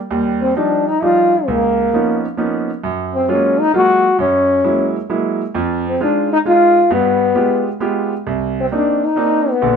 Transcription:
0.11 D#2 G3
0.42 C4
0.56 F3 G3 D4 D#4
0.87 D#4
1.02 F3 G3 D4 D#4 F4
1.48 C#2 A#3
1.93 F3 A#3 B3 C#4 D#4
2.37 F3 A#3 B3 C#4 D#4
2.84 F#2
3.15 C4
3.28 F#3 G#3 A#3 C#4 F4
3.60 D#4
3.74 F#3 G#3 A#3 F4 F#4
4.19 F#2 C#4
4.64 F#3 G#3 A#3 E4
5.10 F#3 G#3 A#3 E4
5.55 F2 F3
5.88 C4
6.00 G#3 D4 D#4 F4
6.33 D#4
6.45 G#3 D#4 F4
6.91 G2 B3
7.35 G#3 B3 F4 G4
7.80 G#3 B3 F4 G4
8.27 C2
8.60 C4
8.72 A#3 C4 D4 D#4
8.76 D4
9.05 D#4
9.16 A#3 C4 D4 D#4
9.50 B3
9.62 A#1 D3

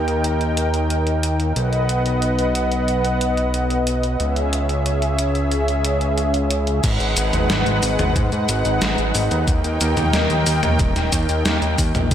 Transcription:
Already playing: D#2 D#3 D#4 A#4 G5
0.08 closed hi-hat
0.24 closed hi-hat
0.41 closed hi-hat
0.57 closed hi-hat
0.74 closed hi-hat
0.90 closed hi-hat
1.07 closed hi-hat
1.23 closed hi-hat
1.40 closed hi-hat
1.56 B1 B3 B4 D#5 F#5, closed hi-hat
1.73 closed hi-hat
1.89 closed hi-hat
2.06 closed hi-hat
2.22 closed hi-hat
2.39 closed hi-hat
2.55 closed hi-hat
2.72 closed hi-hat
2.88 closed hi-hat
3.05 closed hi-hat
3.21 closed hi-hat
3.37 closed hi-hat
3.54 closed hi-hat
3.70 closed hi-hat
3.87 closed hi-hat
4.03 closed hi-hat
4.20 C#2 C#3 C#4 G#4 E5, closed hi-hat
4.36 closed hi-hat
4.53 closed hi-hat
4.69 closed hi-hat
4.86 closed hi-hat
5.02 closed hi-hat
5.19 closed hi-hat
5.35 closed hi-hat
5.52 closed hi-hat
5.68 closed hi-hat
5.85 closed hi-hat
6.01 closed hi-hat
6.18 closed hi-hat
6.34 closed hi-hat
6.51 closed hi-hat
6.67 closed hi-hat
6.83 G#1 G#3 D#4 B4 F#5, kick, closed hi-hat, crash, shaker
7.00 G#1, closed hi-hat, shaker
7.17 G#1, closed hi-hat, shaker
7.33 G#1, closed hi-hat, mid tom, shaker
7.50 G#1, snare, closed hi-hat, shaker
7.66 G#1, closed hi-hat, shaker
7.83 G#1, open hi-hat, shaker
7.99 G#1, closed hi-hat, mid tom, shaker
8.16 G#2, kick, closed hi-hat, shaker
8.32 G#2, closed hi-hat, shaker
8.49 G#1, closed hi-hat, shaker
8.65 G#1, closed hi-hat, shaker
8.82 G#1, snare, closed hi-hat, shaker
8.98 G#1, closed hi-hat, shaker
9.15 G#1, open hi-hat, shaker
9.31 D#2, closed hi-hat, shaker
9.47 D#2 D#3 A#4 G5, kick, closed hi-hat, shaker
9.64 D#2, closed hi-hat, shaker
9.81 D#2, closed hi-hat, shaker
9.97 D#2, closed hi-hat, mid tom, shaker
10.13 D#2, snare, closed hi-hat, shaker
10.30 D#2, closed hi-hat, shaker
10.46 D#2, open hi-hat, shaker
10.63 D#2, closed hi-hat, mid tom, shaker
10.79 D#1, kick, closed hi-hat, shaker
10.96 D#1, snare, closed hi-hat, shaker
11.12 D#2, kick, closed hi-hat, shaker
11.29 D#2, closed hi-hat, shaker
11.45 D#2, snare, closed hi-hat, shaker
11.62 D#2, closed hi-hat, shaker
11.78 D#2, kick, open hi-hat, shaker
11.95 A#1, closed hi-hat, mid tom, shaker
12.11 B1 B3 B4 D#5 F#5, kick, closed hi-hat, shaker

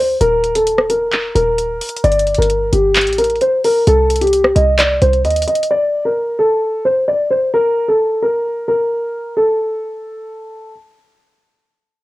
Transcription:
Already playing: D2 C5
0.21 D#1 A#4, closed hi-hat
0.44 closed hi-hat
0.55 A4, closed hi-hat
0.67 closed hi-hat
0.78 cross-stick
0.90 A#4, closed hi-hat
1.12 clap, closed hi-hat
1.35 D#1 A#4, closed hi-hat
1.58 closed hi-hat
1.81 closed hi-hat, open hi-hat
1.89 closed hi-hat
1.96 closed hi-hat
2.04 G1 D5, closed hi-hat
2.12 closed hi-hat
2.19 closed hi-hat
2.27 closed hi-hat
2.35 G1 A#4, closed hi-hat
2.42 closed hi-hat
2.50 closed hi-hat
2.73 G1 G4, closed hi-hat
2.96 clap, closed hi-hat
3.01 closed hi-hat
3.07 A1, closed hi-hat
3.13 closed hi-hat
3.19 A#4, closed hi-hat
3.24 closed hi-hat
3.30 closed hi-hat
3.36 closed hi-hat
3.41 C5, closed hi-hat
3.65 A#4, open hi-hat
3.87 C2 A4, closed hi-hat
4.10 closed hi-hat
4.16 closed hi-hat
4.21 G4, closed hi-hat
4.27 closed hi-hat
4.33 closed hi-hat
4.44 cross-stick
4.56 C2 D#5, closed hi-hat
4.79 D5, clap, closed hi-hat
5.02 C2 C5, closed hi-hat
5.13 closed hi-hat
5.25 D#2 D#5, closed hi-hat
5.30 closed hi-hat
5.36 closed hi-hat
5.42 closed hi-hat
5.47 D#5, closed hi-hat
5.55 closed hi-hat
5.63 closed hi-hat
5.71 D5
6.05 A#4
6.39 A4
6.85 C5
7.08 D5
7.31 C5
7.54 A#4
7.88 A4
8.22 A#4
8.68 A#4
9.37 A4

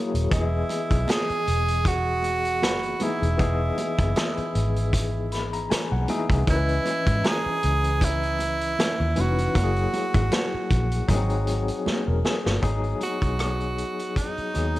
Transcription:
Already playing: F#3 A#3 E4 G#4 G#5
0.14 D#1, closed hi-hat
0.30 E1 E3 B3 E4 G#4 D#5, kick, closed hi-hat, muted conga
0.69 closed hi-hat, muted conga
0.91 B1, kick, closed hi-hat
1.08 G#4, snare, closed hi-hat, high conga
1.30 muted fingered electric bass stroke, closed hi-hat
1.47 E1, closed hi-hat
1.68 closed hi-hat
1.85 F#4, kick, closed hi-hat
2.23 closed hi-hat, muted conga
2.45 closed hi-hat
2.62 F#1 B5, snare, closed hi-hat, high conga
2.83 closed hi-hat
2.99 E3 B3 D#4 E4 G#4, closed hi-hat, high conga
3.22 E1, closed hi-hat
3.37 E1 E3 B3 G#4 D#5, kick, closed hi-hat, muted conga
3.78 closed hi-hat, muted conga
3.99 F#1, kick, closed hi-hat
4.16 D#6, snare, closed hi-hat, high conga
4.37 muted fingered electric bass stroke, closed hi-hat
4.55 G#1, closed hi-hat
4.76 closed hi-hat
4.93 kick, closed hi-hat
5.32 B5, snare, closed hi-hat
5.53 A#5, closed hi-hat
5.70 G#5, muted fingered electric bass stroke, snare, closed hi-hat, high conga
5.92 B1 F#5
6.08 E3 B3 D#4 G#4 E5 G#5, closed hi-hat, high conga
6.30 C2, kick, closed hi-hat
6.47 C#2 E3 C#4 E4 A#4 D#5, kick, closed hi-hat, muted conga
6.56 B4
6.69 closed hi-hat
6.86 closed hi-hat, muted conga
7.07 G#2, kick, closed hi-hat
7.24 G#4 A#5, snare, closed hi-hat, high conga
7.46 muted fingered electric bass stroke
7.63 C#2, closed hi-hat
7.84 closed hi-hat
8.01 E4, kick, closed hi-hat
8.23 closed hi-hat
8.39 closed hi-hat, muted conga
8.61 closed hi-hat
8.79 snare, closed hi-hat, high conga
9.00 D#2
9.16 F1 E3 C#4 D#4 B4, closed hi-hat, high conga
9.21 F#4
9.38 closed hi-hat
9.55 F#1 F#3 A#3 E4 F#4, kick, closed hi-hat, muted conga
9.64 G#4
9.76 closed hi-hat
9.94 closed hi-hat, muted conga
10.14 G#1, kick, closed hi-hat
10.32 snare, closed hi-hat, high conga
10.54 muted fingered electric bass stroke
10.71 A#1, kick, closed hi-hat
10.92 closed hi-hat
11.08 G#1 F#3 A#3 D#4 G#4, kick, closed hi-hat, low conga
11.15 C4
11.30 closed hi-hat
11.47 closed hi-hat
11.68 closed hi-hat
11.86 muted fingered electric bass stroke, snare, high conga
12.07 E1 A#4
12.25 G#4, snare, high conga
12.45 G1 F#4, snare
12.61 G#1 F#3 B3 D#4 G#4 G#5, kick, closed hi-hat, muted conga
12.84 closed hi-hat
13.01 F#4, closed hi-hat, muted conga
13.22 B1, kick, closed hi-hat
13.39 cross-stick, closed hi-hat, high conga
13.60 closed hi-hat
13.78 closed hi-hat
13.99 closed hi-hat
14.16 D#4, kick, closed hi-hat
14.38 muted fingered electric bass stroke, closed hi-hat
14.54 D#2 F#3 B3 D#4 G#4 A#5, cross-stick, closed hi-hat, muted conga
14.76 closed hi-hat

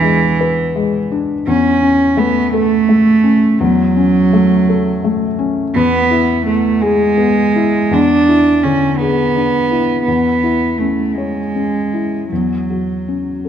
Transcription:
Already playing: E2 E3 D4
0.02 G#3
0.41 B4
0.76 G#3
1.12 D4
1.47 E2 C#4
1.82 C#4
2.17 A3 B3
2.53 A3 A4
2.89 A3
3.23 C#4
3.58 E2 F#3
3.96 C#4
4.33 A3
4.69 A4
5.04 A3
5.39 C#4
5.74 E2 B3
6.11 E4
6.46 A3 B3
6.81 G#3 G#4
7.17 B3
7.56 E4
7.91 E2 D4
8.28 E4
8.63 D3 C#4
8.97 B3 G#4
9.36 D4
9.71 E4
10.04 E2 B3
10.44 E4
10.78 A3 C#4
11.14 G#3
11.18 C#5
11.55 C#4
11.94 E4
12.31 E2 F#3
12.70 F#4
13.08 C#4
13.45 A4

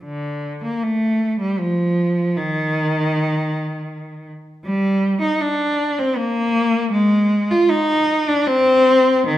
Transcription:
0.04 D3
0.64 A#3
0.83 A3
1.40 G3
1.59 F3
2.37 D#3
4.65 G3
5.22 D#4
5.41 D4
5.99 C4
6.17 A#3
6.92 G#3
7.51 F4
7.69 D#4
8.28 D4
8.47 C4
9.28 D#3

